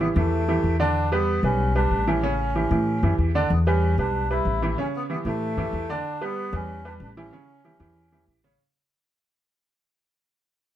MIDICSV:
0, 0, Header, 1, 4, 480
1, 0, Start_track
1, 0, Tempo, 318302
1, 1443, Time_signature, 4, 2, 24, 8
1, 16214, End_track
2, 0, Start_track
2, 0, Title_t, "Grand piano"
2, 0, Program_c, 0, 0
2, 7, Note_on_c, 0, 52, 69
2, 10, Note_on_c, 0, 64, 75
2, 15, Note_on_c, 0, 67, 67
2, 202, Note_off_c, 0, 52, 0
2, 204, Note_off_c, 0, 64, 0
2, 207, Note_off_c, 0, 67, 0
2, 246, Note_on_c, 0, 52, 76
2, 251, Note_on_c, 0, 64, 77
2, 257, Note_on_c, 0, 67, 74
2, 639, Note_off_c, 0, 52, 0
2, 642, Note_off_c, 0, 64, 0
2, 645, Note_off_c, 0, 67, 0
2, 729, Note_on_c, 0, 52, 76
2, 733, Note_on_c, 0, 64, 77
2, 738, Note_on_c, 0, 67, 82
2, 1121, Note_off_c, 0, 52, 0
2, 1123, Note_off_c, 0, 64, 0
2, 1126, Note_off_c, 0, 67, 0
2, 1200, Note_on_c, 0, 50, 101
2, 1203, Note_on_c, 0, 62, 98
2, 1213, Note_on_c, 0, 74, 99
2, 1596, Note_off_c, 0, 50, 0
2, 1597, Note_off_c, 0, 62, 0
2, 1603, Note_off_c, 0, 74, 0
2, 1685, Note_on_c, 0, 55, 84
2, 1688, Note_on_c, 0, 67, 91
2, 1697, Note_on_c, 0, 71, 93
2, 2078, Note_off_c, 0, 55, 0
2, 2080, Note_off_c, 0, 67, 0
2, 2085, Note_off_c, 0, 71, 0
2, 2167, Note_on_c, 0, 55, 74
2, 2170, Note_on_c, 0, 67, 64
2, 2177, Note_on_c, 0, 71, 69
2, 2560, Note_off_c, 0, 55, 0
2, 2562, Note_off_c, 0, 67, 0
2, 2566, Note_off_c, 0, 71, 0
2, 2641, Note_on_c, 0, 55, 77
2, 2648, Note_on_c, 0, 67, 78
2, 2650, Note_on_c, 0, 71, 80
2, 3036, Note_off_c, 0, 55, 0
2, 3040, Note_off_c, 0, 67, 0
2, 3042, Note_off_c, 0, 71, 0
2, 3127, Note_on_c, 0, 52, 82
2, 3131, Note_on_c, 0, 64, 85
2, 3137, Note_on_c, 0, 67, 80
2, 3323, Note_off_c, 0, 52, 0
2, 3326, Note_off_c, 0, 64, 0
2, 3329, Note_off_c, 0, 67, 0
2, 3364, Note_on_c, 0, 49, 89
2, 3370, Note_on_c, 0, 61, 100
2, 3374, Note_on_c, 0, 73, 89
2, 3759, Note_off_c, 0, 49, 0
2, 3762, Note_off_c, 0, 61, 0
2, 3764, Note_off_c, 0, 73, 0
2, 3851, Note_on_c, 0, 52, 69
2, 3855, Note_on_c, 0, 64, 68
2, 3856, Note_on_c, 0, 67, 75
2, 4046, Note_off_c, 0, 52, 0
2, 4048, Note_off_c, 0, 64, 0
2, 4049, Note_off_c, 0, 67, 0
2, 4087, Note_on_c, 0, 52, 64
2, 4090, Note_on_c, 0, 64, 71
2, 4097, Note_on_c, 0, 67, 65
2, 4481, Note_off_c, 0, 52, 0
2, 4482, Note_off_c, 0, 64, 0
2, 4487, Note_off_c, 0, 67, 0
2, 4570, Note_on_c, 0, 52, 75
2, 4573, Note_on_c, 0, 64, 70
2, 4576, Note_on_c, 0, 67, 68
2, 4963, Note_off_c, 0, 52, 0
2, 4964, Note_off_c, 0, 64, 0
2, 4966, Note_off_c, 0, 67, 0
2, 5053, Note_on_c, 0, 50, 104
2, 5057, Note_on_c, 0, 62, 101
2, 5065, Note_on_c, 0, 74, 98
2, 5247, Note_off_c, 0, 50, 0
2, 5250, Note_off_c, 0, 62, 0
2, 5254, Note_off_c, 0, 74, 0
2, 5530, Note_on_c, 0, 55, 84
2, 5532, Note_on_c, 0, 67, 88
2, 5538, Note_on_c, 0, 71, 86
2, 5923, Note_off_c, 0, 55, 0
2, 5924, Note_off_c, 0, 67, 0
2, 5927, Note_off_c, 0, 71, 0
2, 6011, Note_on_c, 0, 55, 65
2, 6014, Note_on_c, 0, 67, 68
2, 6020, Note_on_c, 0, 71, 71
2, 6403, Note_off_c, 0, 55, 0
2, 6405, Note_off_c, 0, 67, 0
2, 6408, Note_off_c, 0, 71, 0
2, 6488, Note_on_c, 0, 55, 73
2, 6493, Note_on_c, 0, 67, 70
2, 6496, Note_on_c, 0, 71, 75
2, 6881, Note_off_c, 0, 55, 0
2, 6884, Note_off_c, 0, 67, 0
2, 6886, Note_off_c, 0, 71, 0
2, 6972, Note_on_c, 0, 52, 89
2, 6978, Note_on_c, 0, 64, 85
2, 6983, Note_on_c, 0, 67, 79
2, 7167, Note_off_c, 0, 52, 0
2, 7171, Note_off_c, 0, 64, 0
2, 7173, Note_off_c, 0, 67, 0
2, 7210, Note_on_c, 0, 49, 90
2, 7212, Note_on_c, 0, 61, 91
2, 7221, Note_on_c, 0, 73, 95
2, 7602, Note_off_c, 0, 49, 0
2, 7604, Note_off_c, 0, 61, 0
2, 7609, Note_off_c, 0, 73, 0
2, 7685, Note_on_c, 0, 52, 81
2, 7690, Note_on_c, 0, 64, 76
2, 7692, Note_on_c, 0, 67, 70
2, 7883, Note_off_c, 0, 52, 0
2, 7886, Note_off_c, 0, 64, 0
2, 7887, Note_off_c, 0, 67, 0
2, 7930, Note_on_c, 0, 52, 75
2, 7933, Note_on_c, 0, 64, 72
2, 7941, Note_on_c, 0, 67, 75
2, 8323, Note_off_c, 0, 52, 0
2, 8324, Note_off_c, 0, 64, 0
2, 8329, Note_off_c, 0, 67, 0
2, 8406, Note_on_c, 0, 52, 87
2, 8412, Note_on_c, 0, 64, 77
2, 8415, Note_on_c, 0, 67, 78
2, 8801, Note_off_c, 0, 52, 0
2, 8804, Note_off_c, 0, 64, 0
2, 8806, Note_off_c, 0, 67, 0
2, 8888, Note_on_c, 0, 50, 93
2, 8894, Note_on_c, 0, 62, 94
2, 8900, Note_on_c, 0, 74, 103
2, 9281, Note_off_c, 0, 50, 0
2, 9285, Note_off_c, 0, 62, 0
2, 9289, Note_off_c, 0, 74, 0
2, 9368, Note_on_c, 0, 55, 89
2, 9370, Note_on_c, 0, 67, 90
2, 9374, Note_on_c, 0, 71, 81
2, 9761, Note_off_c, 0, 55, 0
2, 9763, Note_off_c, 0, 67, 0
2, 9765, Note_off_c, 0, 71, 0
2, 9841, Note_on_c, 0, 55, 79
2, 9846, Note_on_c, 0, 67, 67
2, 9852, Note_on_c, 0, 71, 75
2, 10238, Note_off_c, 0, 55, 0
2, 10240, Note_off_c, 0, 67, 0
2, 10244, Note_off_c, 0, 71, 0
2, 10328, Note_on_c, 0, 55, 83
2, 10328, Note_on_c, 0, 67, 76
2, 10333, Note_on_c, 0, 71, 81
2, 10721, Note_off_c, 0, 55, 0
2, 10721, Note_off_c, 0, 67, 0
2, 10724, Note_off_c, 0, 71, 0
2, 10813, Note_on_c, 0, 52, 76
2, 10816, Note_on_c, 0, 64, 92
2, 10821, Note_on_c, 0, 67, 85
2, 11007, Note_off_c, 0, 52, 0
2, 11009, Note_off_c, 0, 64, 0
2, 11012, Note_off_c, 0, 67, 0
2, 11045, Note_on_c, 0, 49, 88
2, 11054, Note_on_c, 0, 61, 86
2, 11059, Note_on_c, 0, 73, 91
2, 11440, Note_off_c, 0, 49, 0
2, 11445, Note_off_c, 0, 61, 0
2, 11448, Note_off_c, 0, 73, 0
2, 11527, Note_on_c, 0, 52, 62
2, 11533, Note_on_c, 0, 64, 73
2, 11535, Note_on_c, 0, 67, 79
2, 11724, Note_off_c, 0, 52, 0
2, 11728, Note_off_c, 0, 64, 0
2, 11728, Note_off_c, 0, 67, 0
2, 11762, Note_on_c, 0, 52, 79
2, 11766, Note_on_c, 0, 64, 78
2, 11771, Note_on_c, 0, 67, 76
2, 12158, Note_off_c, 0, 52, 0
2, 12160, Note_off_c, 0, 64, 0
2, 12163, Note_off_c, 0, 67, 0
2, 12247, Note_on_c, 0, 52, 77
2, 12252, Note_on_c, 0, 64, 75
2, 12256, Note_on_c, 0, 67, 72
2, 12640, Note_off_c, 0, 52, 0
2, 12643, Note_off_c, 0, 64, 0
2, 12646, Note_off_c, 0, 67, 0
2, 12726, Note_on_c, 0, 49, 93
2, 12732, Note_on_c, 0, 61, 100
2, 12734, Note_on_c, 0, 73, 92
2, 12923, Note_off_c, 0, 49, 0
2, 12927, Note_off_c, 0, 61, 0
2, 12928, Note_off_c, 0, 73, 0
2, 16214, End_track
3, 0, Start_track
3, 0, Title_t, "Melodica"
3, 0, Program_c, 1, 22
3, 21, Note_on_c, 1, 59, 94
3, 125, Note_off_c, 1, 59, 0
3, 264, Note_on_c, 1, 57, 97
3, 1154, Note_off_c, 1, 57, 0
3, 1232, Note_on_c, 1, 62, 111
3, 1665, Note_off_c, 1, 62, 0
3, 1709, Note_on_c, 1, 59, 97
3, 2144, Note_off_c, 1, 59, 0
3, 2186, Note_on_c, 1, 61, 107
3, 2623, Note_off_c, 1, 61, 0
3, 2662, Note_on_c, 1, 62, 106
3, 3140, Note_on_c, 1, 61, 89
3, 3148, Note_off_c, 1, 62, 0
3, 4753, Note_off_c, 1, 61, 0
3, 5064, Note_on_c, 1, 62, 82
3, 5302, Note_off_c, 1, 62, 0
3, 5307, Note_on_c, 1, 59, 91
3, 5411, Note_off_c, 1, 59, 0
3, 5533, Note_on_c, 1, 61, 114
3, 5977, Note_off_c, 1, 61, 0
3, 6029, Note_on_c, 1, 62, 101
3, 6465, Note_off_c, 1, 62, 0
3, 6509, Note_on_c, 1, 64, 125
3, 6972, Note_off_c, 1, 64, 0
3, 6994, Note_on_c, 1, 64, 101
3, 7205, Note_off_c, 1, 64, 0
3, 7241, Note_on_c, 1, 61, 94
3, 7342, Note_off_c, 1, 61, 0
3, 7483, Note_on_c, 1, 59, 109
3, 7583, Note_off_c, 1, 59, 0
3, 7718, Note_on_c, 1, 59, 101
3, 7819, Note_off_c, 1, 59, 0
3, 7953, Note_on_c, 1, 57, 114
3, 8910, Note_on_c, 1, 62, 107
3, 8929, Note_off_c, 1, 57, 0
3, 9393, Note_off_c, 1, 62, 0
3, 9407, Note_on_c, 1, 59, 114
3, 9881, Note_off_c, 1, 59, 0
3, 9893, Note_on_c, 1, 61, 105
3, 10360, Note_on_c, 1, 62, 89
3, 10364, Note_off_c, 1, 61, 0
3, 10460, Note_off_c, 1, 62, 0
3, 10600, Note_on_c, 1, 62, 86
3, 10700, Note_off_c, 1, 62, 0
3, 10833, Note_on_c, 1, 61, 97
3, 12439, Note_off_c, 1, 61, 0
3, 16214, End_track
4, 0, Start_track
4, 0, Title_t, "Upright bass"
4, 0, Program_c, 2, 32
4, 0, Note_on_c, 2, 33, 85
4, 157, Note_off_c, 2, 33, 0
4, 238, Note_on_c, 2, 40, 101
4, 910, Note_off_c, 2, 40, 0
4, 958, Note_on_c, 2, 40, 83
4, 2077, Note_off_c, 2, 40, 0
4, 2155, Note_on_c, 2, 35, 99
4, 2830, Note_off_c, 2, 35, 0
4, 2879, Note_on_c, 2, 33, 81
4, 3998, Note_off_c, 2, 33, 0
4, 4083, Note_on_c, 2, 45, 98
4, 4531, Note_off_c, 2, 45, 0
4, 4563, Note_on_c, 2, 42, 85
4, 4788, Note_off_c, 2, 42, 0
4, 4800, Note_on_c, 2, 40, 83
4, 5227, Note_off_c, 2, 40, 0
4, 5282, Note_on_c, 2, 40, 109
4, 5954, Note_off_c, 2, 40, 0
4, 5998, Note_on_c, 2, 35, 89
4, 6672, Note_off_c, 2, 35, 0
4, 6714, Note_on_c, 2, 33, 89
4, 7144, Note_off_c, 2, 33, 0
4, 7915, Note_on_c, 2, 45, 97
4, 8367, Note_off_c, 2, 45, 0
4, 8397, Note_on_c, 2, 42, 82
4, 8625, Note_off_c, 2, 42, 0
4, 8640, Note_on_c, 2, 40, 85
4, 9068, Note_off_c, 2, 40, 0
4, 9842, Note_on_c, 2, 40, 104
4, 10514, Note_off_c, 2, 40, 0
4, 10557, Note_on_c, 2, 33, 96
4, 10986, Note_off_c, 2, 33, 0
4, 11759, Note_on_c, 2, 40, 101
4, 12432, Note_off_c, 2, 40, 0
4, 12479, Note_on_c, 2, 33, 74
4, 12907, Note_off_c, 2, 33, 0
4, 16214, End_track
0, 0, End_of_file